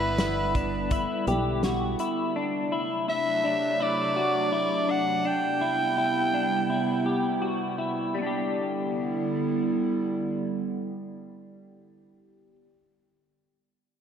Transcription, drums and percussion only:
0.18 snare loud
0.18 closed hi-hat medium
0.55 kick medium
0.55 closed hi-hat soft
0.91 kick medium
0.91 closed hi-hat medium
1.27 closed hi-hat soft
1.63 snare medium
1.63 closed hi-hat medium
1.99 closed hi-hat soft

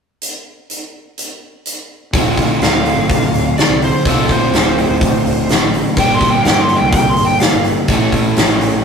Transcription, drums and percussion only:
0.22 closed hi-hat soft
0.70 closed hi-hat soft
1.18 closed hi-hat medium
1.66 closed hi-hat soft
2.13 kick medium
2.13 open hi-hat medium
2.37 kick medium
2.37 open hi-hat soft
2.62 snare medium
2.62 open hi-hat medium
2.86 open hi-hat soft
3.10 kick loud
3.10 open hi-hat medium
3.34 open hi-hat soft
3.58 snare medium
3.58 open hi-hat medium
3.82 open hi-hat soft
4.05 kick medium
4.05 open hi-hat medium
4.29 kick medium
4.29 open hi-hat soft
4.53 snare medium
4.53 open hi-hat medium
4.78 open hi-hat soft
5.01 kick loud
5.01 open hi-hat medium
5.26 open hi-hat soft
5.49 snare medium
5.49 open hi-hat medium
5.74 open hi-hat soft
5.97 kick medium
5.97 open hi-hat medium
6.21 kick medium
6.21 open hi-hat soft
6.45 snare medium
6.45 open hi-hat medium
6.69 open hi-hat soft
6.93 kick loud
6.93 open hi-hat medium
7.16 open hi-hat soft
7.40 snare medium
7.40 open hi-hat medium
7.64 open hi-hat soft
7.88 kick medium
7.88 open hi-hat medium
8.12 kick medium
8.12 open hi-hat soft
8.36 snare medium
8.36 open hi-hat medium
8.61 open hi-hat soft

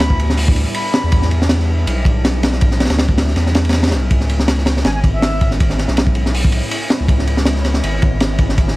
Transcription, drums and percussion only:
0.01 snare loud
0.10 kick medium
0.20 ride medium
0.30 snare medium
0.37 open hi-hat medium
0.48 kick loud
0.56 ride medium
0.74 ride medium
0.94 snare loud
0.94 ride medium
1.12 kick loud
1.12 ride medium
1.22 snare soft
1.31 ride medium
1.42 snare medium
1.49 snare loud
1.49 ride medium
1.60 snare soft
1.87 ride medium
2.05 kick loud
2.05 ride medium
2.25 snare loud
2.25 ride medium
2.43 snare loud
2.43 ride medium
2.52 snare soft
2.61 kick loud
2.61 ride medium
2.71 snare soft
2.80 snare medium
2.80 ride medium
2.85 snare medium
2.85 ride medium
2.90 snare loud
2.90 ride medium
2.99 snare loud
2.99 ride medium
3.09 kick loud
3.18 snare loud
3.18 ride medium
3.28 snare soft
3.36 snare soft
3.36 ride medium
3.46 snare soft
3.55 snare loud
3.55 ride medium
3.65 ride medium
3.69 snare medium
3.69 ride medium
3.73 snare loud
3.73 ride medium
3.83 snare medium
3.83 ride medium
3.88 snare medium
3.88 ride medium
3.91 snare loud
3.91 ride medium
4.11 kick loud
4.11 ride medium
4.20 snare soft
4.30 ride medium
4.40 snare medium
4.48 snare loud
4.48 ride medium
4.58 snare soft
4.66 snare loud
4.66 ride medium
4.77 snare medium
4.85 snare loud
4.85 ride medium
5.04 kick loud
5.04 ride medium
5.22 snare loud
5.22 ride medium
5.41 kick loud
5.41 ride medium
5.51 snare soft
5.60 kick loud
5.60 ride medium
5.70 snare soft
5.78 snare soft
5.78 ride medium
5.88 snare soft
5.97 snare loud
5.97 ride medium
6.07 kick medium
6.15 ride medium
6.26 snare medium
6.34 open hi-hat medium
6.45 kick medium
6.52 ride medium
6.71 ride medium
6.90 snare loud
6.90 ride medium
7.08 kick loud
7.08 ride medium
7.19 snare soft
7.27 ride medium
7.37 snare medium
7.45 snare loud
7.45 ride loud
7.56 snare soft
7.65 snare soft
7.65 ride medium
7.74 snare medium
7.84 ride medium
8.02 kick medium
8.02 ride medium
8.20 snare loud
8.20 ride medium
8.38 kick medium
8.38 ride medium
8.49 snare soft
8.58 kick loud
8.58 ride medium
8.68 snare medium

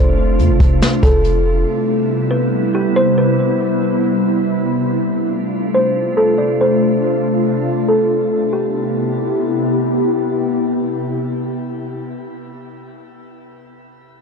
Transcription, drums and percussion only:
0.39 closed hi-hat medium
0.60 kick medium
0.60 closed hi-hat medium
0.81 snare loud
0.81 closed hi-hat medium
1.03 kick medium
1.03 closed hi-hat medium
1.24 closed hi-hat medium

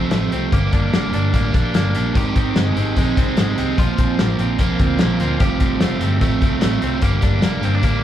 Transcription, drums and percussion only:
0.11 snare medium
0.11 closed hi-hat medium
0.32 closed hi-hat medium
0.52 kick loud
0.52 closed hi-hat medium
0.73 kick medium
0.73 closed hi-hat medium
0.94 snare loud
0.94 closed hi-hat medium
1.13 closed hi-hat medium
1.34 kick medium
1.34 closed hi-hat medium
1.54 kick medium
1.54 closed hi-hat medium
1.74 snare loud
1.74 closed hi-hat medium
1.95 closed hi-hat medium
2.15 kick loud
2.15 closed hi-hat medium
2.36 kick medium
2.36 closed hi-hat medium
2.56 snare medium
2.56 closed hi-hat medium
2.77 closed hi-hat medium
2.96 kick medium
2.96 closed hi-hat medium
3.17 kick medium
3.17 closed hi-hat medium
3.37 snare medium
3.37 closed hi-hat medium
3.58 closed hi-hat medium
3.78 kick loud
3.78 closed hi-hat medium
3.98 kick medium
3.98 closed hi-hat medium
4.19 snare loud
4.19 closed hi-hat medium
4.39 closed hi-hat medium
4.59 kick medium
4.59 closed hi-hat medium
4.79 kick medium
4.79 closed hi-hat medium
4.99 snare medium
4.99 closed hi-hat medium
5.20 closed hi-hat medium
5.40 kick loud
5.40 closed hi-hat medium
5.60 kick medium
5.60 closed hi-hat medium
5.81 snare medium
5.81 closed hi-hat medium
6.01 closed hi-hat medium
6.21 kick medium
6.21 closed hi-hat medium
6.42 kick medium
6.42 closed hi-hat medium
6.61 snare loud
6.61 closed hi-hat medium
6.82 closed hi-hat medium
7.02 kick medium
7.02 closed hi-hat medium
7.22 kick medium
7.22 closed hi-hat medium
7.42 snare medium
7.42 closed hi-hat medium
7.63 closed hi-hat medium
7.83 kick medium
7.83 closed hi-hat medium

